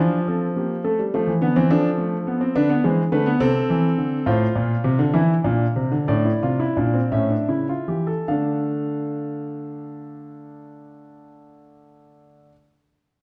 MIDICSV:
0, 0, Header, 1, 2, 480
1, 0, Start_track
1, 0, Key_signature, -1, "minor"
1, 0, Tempo, 569260
1, 722, Time_signature, 6, 3, 24, 8
1, 4088, Tempo, 607903
1, 4568, Tempo, 654308
1, 5528, Tempo, 720288
1, 6008, Tempo, 779221
1, 6488, Tempo, 808625
1, 9430, End_track
2, 0, Start_track
2, 0, Title_t, "Grand piano"
2, 0, Program_c, 0, 0
2, 0, Note_on_c, 0, 53, 95
2, 0, Note_on_c, 0, 62, 81
2, 0, Note_on_c, 0, 65, 72
2, 140, Note_off_c, 0, 65, 0
2, 141, Note_off_c, 0, 62, 0
2, 234, Note_on_c, 0, 69, 69
2, 236, Note_on_c, 0, 60, 71
2, 386, Note_off_c, 0, 69, 0
2, 387, Note_off_c, 0, 60, 0
2, 474, Note_on_c, 0, 58, 53
2, 478, Note_on_c, 0, 67, 57
2, 625, Note_off_c, 0, 58, 0
2, 627, Note_off_c, 0, 67, 0
2, 688, Note_off_c, 0, 53, 0
2, 711, Note_on_c, 0, 57, 88
2, 712, Note_on_c, 0, 69, 80
2, 832, Note_off_c, 0, 57, 0
2, 837, Note_on_c, 0, 55, 68
2, 862, Note_off_c, 0, 69, 0
2, 953, Note_off_c, 0, 55, 0
2, 961, Note_on_c, 0, 57, 93
2, 966, Note_on_c, 0, 53, 77
2, 966, Note_on_c, 0, 72, 69
2, 1073, Note_on_c, 0, 52, 69
2, 1076, Note_off_c, 0, 53, 0
2, 1106, Note_off_c, 0, 57, 0
2, 1110, Note_off_c, 0, 72, 0
2, 1189, Note_off_c, 0, 52, 0
2, 1193, Note_on_c, 0, 50, 81
2, 1193, Note_on_c, 0, 59, 95
2, 1197, Note_on_c, 0, 71, 76
2, 1308, Note_off_c, 0, 50, 0
2, 1308, Note_off_c, 0, 59, 0
2, 1317, Note_on_c, 0, 60, 102
2, 1318, Note_on_c, 0, 52, 89
2, 1343, Note_off_c, 0, 71, 0
2, 1430, Note_off_c, 0, 60, 0
2, 1431, Note_off_c, 0, 52, 0
2, 1436, Note_on_c, 0, 53, 88
2, 1438, Note_on_c, 0, 62, 112
2, 1440, Note_on_c, 0, 69, 75
2, 1584, Note_off_c, 0, 62, 0
2, 1671, Note_on_c, 0, 57, 81
2, 1820, Note_off_c, 0, 57, 0
2, 1914, Note_on_c, 0, 59, 80
2, 2030, Note_off_c, 0, 59, 0
2, 2031, Note_on_c, 0, 60, 92
2, 2133, Note_off_c, 0, 53, 0
2, 2135, Note_off_c, 0, 69, 0
2, 2148, Note_off_c, 0, 60, 0
2, 2152, Note_on_c, 0, 71, 88
2, 2155, Note_on_c, 0, 50, 88
2, 2155, Note_on_c, 0, 62, 116
2, 2270, Note_off_c, 0, 62, 0
2, 2272, Note_on_c, 0, 59, 97
2, 2301, Note_off_c, 0, 71, 0
2, 2303, Note_off_c, 0, 50, 0
2, 2388, Note_off_c, 0, 59, 0
2, 2395, Note_on_c, 0, 72, 72
2, 2396, Note_on_c, 0, 56, 87
2, 2399, Note_on_c, 0, 52, 80
2, 2541, Note_off_c, 0, 72, 0
2, 2542, Note_off_c, 0, 56, 0
2, 2544, Note_off_c, 0, 52, 0
2, 2631, Note_on_c, 0, 50, 92
2, 2631, Note_on_c, 0, 71, 95
2, 2633, Note_on_c, 0, 57, 102
2, 2747, Note_off_c, 0, 57, 0
2, 2751, Note_on_c, 0, 59, 102
2, 2779, Note_off_c, 0, 50, 0
2, 2779, Note_off_c, 0, 71, 0
2, 2866, Note_off_c, 0, 59, 0
2, 2870, Note_on_c, 0, 48, 87
2, 2870, Note_on_c, 0, 60, 119
2, 2872, Note_on_c, 0, 69, 99
2, 3019, Note_off_c, 0, 48, 0
2, 3119, Note_on_c, 0, 52, 80
2, 3266, Note_off_c, 0, 52, 0
2, 3355, Note_on_c, 0, 50, 67
2, 3505, Note_off_c, 0, 50, 0
2, 3574, Note_off_c, 0, 60, 0
2, 3576, Note_off_c, 0, 69, 0
2, 3594, Note_on_c, 0, 45, 100
2, 3594, Note_on_c, 0, 72, 94
2, 3597, Note_on_c, 0, 65, 98
2, 3745, Note_off_c, 0, 45, 0
2, 3841, Note_on_c, 0, 46, 90
2, 3993, Note_off_c, 0, 46, 0
2, 4082, Note_on_c, 0, 48, 103
2, 4198, Note_off_c, 0, 48, 0
2, 4199, Note_on_c, 0, 50, 108
2, 4303, Note_off_c, 0, 65, 0
2, 4315, Note_on_c, 0, 64, 92
2, 4316, Note_on_c, 0, 52, 96
2, 4317, Note_off_c, 0, 50, 0
2, 4469, Note_off_c, 0, 52, 0
2, 4469, Note_off_c, 0, 64, 0
2, 4558, Note_on_c, 0, 62, 76
2, 4559, Note_on_c, 0, 46, 93
2, 4705, Note_off_c, 0, 46, 0
2, 4705, Note_off_c, 0, 62, 0
2, 4790, Note_on_c, 0, 48, 82
2, 4793, Note_on_c, 0, 60, 62
2, 4905, Note_on_c, 0, 50, 97
2, 4909, Note_off_c, 0, 48, 0
2, 4942, Note_off_c, 0, 60, 0
2, 5005, Note_off_c, 0, 72, 0
2, 5024, Note_on_c, 0, 62, 84
2, 5026, Note_off_c, 0, 50, 0
2, 5026, Note_on_c, 0, 45, 91
2, 5027, Note_on_c, 0, 74, 93
2, 5147, Note_off_c, 0, 62, 0
2, 5150, Note_on_c, 0, 64, 70
2, 5179, Note_off_c, 0, 45, 0
2, 5271, Note_off_c, 0, 64, 0
2, 5280, Note_on_c, 0, 48, 81
2, 5280, Note_on_c, 0, 65, 82
2, 5399, Note_off_c, 0, 65, 0
2, 5405, Note_on_c, 0, 64, 83
2, 5433, Note_off_c, 0, 48, 0
2, 5524, Note_off_c, 0, 64, 0
2, 5529, Note_on_c, 0, 62, 82
2, 5530, Note_on_c, 0, 46, 86
2, 5640, Note_off_c, 0, 62, 0
2, 5644, Note_on_c, 0, 60, 79
2, 5674, Note_off_c, 0, 46, 0
2, 5737, Note_off_c, 0, 74, 0
2, 5758, Note_off_c, 0, 60, 0
2, 5763, Note_on_c, 0, 45, 82
2, 5763, Note_on_c, 0, 61, 87
2, 5763, Note_on_c, 0, 76, 89
2, 5880, Note_off_c, 0, 61, 0
2, 5883, Note_on_c, 0, 62, 78
2, 5915, Note_off_c, 0, 45, 0
2, 6003, Note_off_c, 0, 62, 0
2, 6007, Note_on_c, 0, 49, 69
2, 6009, Note_on_c, 0, 64, 71
2, 6121, Note_off_c, 0, 64, 0
2, 6134, Note_on_c, 0, 65, 73
2, 6153, Note_off_c, 0, 49, 0
2, 6244, Note_off_c, 0, 65, 0
2, 6250, Note_on_c, 0, 52, 58
2, 6251, Note_on_c, 0, 67, 69
2, 6364, Note_off_c, 0, 67, 0
2, 6368, Note_on_c, 0, 69, 76
2, 6399, Note_off_c, 0, 52, 0
2, 6466, Note_off_c, 0, 76, 0
2, 6485, Note_off_c, 0, 69, 0
2, 6497, Note_on_c, 0, 77, 76
2, 6498, Note_on_c, 0, 50, 81
2, 6499, Note_on_c, 0, 69, 75
2, 6514, Note_on_c, 0, 57, 64
2, 6514, Note_on_c, 0, 62, 75
2, 8991, Note_off_c, 0, 77, 0
2, 8992, Note_off_c, 0, 50, 0
2, 8993, Note_off_c, 0, 69, 0
2, 9007, Note_off_c, 0, 57, 0
2, 9008, Note_off_c, 0, 62, 0
2, 9430, End_track
0, 0, End_of_file